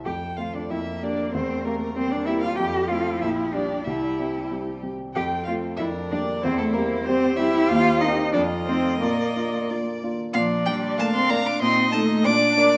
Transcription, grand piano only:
0.06 F2
0.38 A3 C4 F4
0.70 F2
1.02 A#3 G4
1.34 E2
1.65 A#3 C4 G4
1.96 A#3 C4 G4
2.28 A#3 C4 G4
2.59 F2
2.90 A3 C4 F4
3.22 A#1
3.54 G3 D4 G4
3.87 C2
4.19 G3 C4 G4
4.51 G3 C4 G4
4.83 G3 C4 G4
5.15 F2
5.48 A3 C4 F4
5.80 F2
6.12 G3 A#3 G4
6.45 E2
6.76 G3 C4 G4
7.08 G3 C4 G4
7.39 G3 C4 G4
7.71 D#2
8.03 A#3 C4 G4
8.35 F2
8.68 A3 D#4 F4
9.02 A#2
9.36 A#3 D4 F4
9.70 A#3 D4 F4
10.03 A#3 D4 F4
10.35 A#2
10.67 D4
10.99 A#3
11.31 D4
11.62 A#2
11.94 D#4 A4
12.26 A#2
12.58 D4 A#4

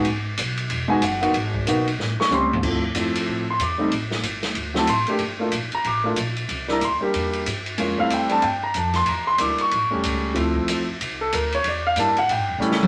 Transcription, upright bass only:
0.06 G#1
0.38 B1
0.71 E1
1.01 F#1
1.33 G#1
1.65 B1
1.98 A1
2.19 muted upright bass stroke
2.30 C#2
2.62 D2
2.94 F2
3.27 A2
3.59 E2
3.91 A1
4.23 G1
4.54 D2
4.86 A1
5.19 G1
5.51 A#1
5.73 muted upright bass stroke
5.85 A1
6.17 A#1
6.49 C2
6.82 D2
7.02 muted upright bass stroke
7.14 E2
7.46 G2
7.78 F2
7.99 muted upright bass stroke
8.10 E2
8.43 G2
8.75 F2
9.07 E2
9.41 D2
9.72 A1
9.83 G1
9.94 E1
10.04 C#2
10.36 D2
10.68 E2
10.89 muted upright bass stroke
11.00 C2
11.33 D2
11.65 E2
11.96 G2
12.28 A2
12.38 G2
12.48 E2
12.58 C#3

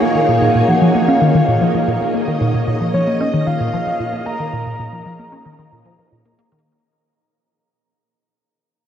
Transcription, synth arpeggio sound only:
0.02 A#3
0.15 D#3
0.28 A#2
0.41 A#2
0.55 A#2
0.68 F3
0.81 F3
0.95 A#3
1.08 C#4
1.21 D#3
1.35 D#3
1.48 A#2
1.61 F3
1.74 F3
1.88 A#2
2.01 A#3
2.14 A#3
2.28 D#3
2.41 A#2
2.54 A#2
2.67 A#2
2.81 F3
2.94 F3
3.07 A#3
3.21 C#4
3.34 D#3
3.47 D#3
3.60 A#2
3.73 F3
3.87 F3
4.00 A#2
4.13 A#3
4.26 A#3
4.40 D#3
4.53 A#2
4.66 A#2
4.79 A#2
4.92 F3
5.06 F3
5.19 A#3
5.32 C#4
5.46 D#3
5.59 D#3
5.72 A#2
5.85 F3
5.99 F3
6.12 A#2
6.25 A#3
6.39 A#3
6.52 D#3

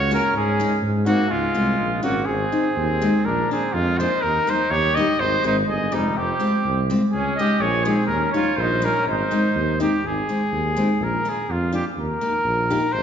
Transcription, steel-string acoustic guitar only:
0.11 A#3 C#4 F#4
0.60 G#3 C#4 D#4
1.06 G#3 C4 D#4
1.54 G#3 C#4 F4
2.03 G#3 C#4 F4
2.52 G#3 C4 D#4
3.02 G#3 C4 D#4
3.51 F3 A#3 D4
4.00 F3 A#3 D4
4.47 G3 A#3 D#4
4.97 G3 A#3 D#4
5.44 G#3 C4 D#4
5.92 G#3 C4 D#4
6.40 G#3 C4 F4
6.90 G#3 C4 F4
7.39 G#3 C#4 D#4
7.85 G#3 C#4 D#4
8.34 G3 A#3 D#4
8.82 G3 A#3 D#4
9.31 G#3 C4 D#4
9.80 G#3 C4 D#4
10.29 G#3 C4 D#4
10.76 G#3 C4 D#4
11.25 A#3 D4 F4
11.72 A#3 D4 F4
12.21 A#3 D#4 G4
12.70 A#3 D#4 G4

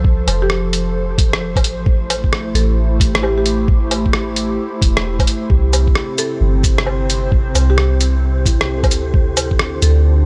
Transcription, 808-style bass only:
Already playing: C2
0.27 F1
1.64 A1
2.55 A1
4.82 E1
5.50 C2
6.41 G1
7.55 C2
8.91 D2
9.82 D2

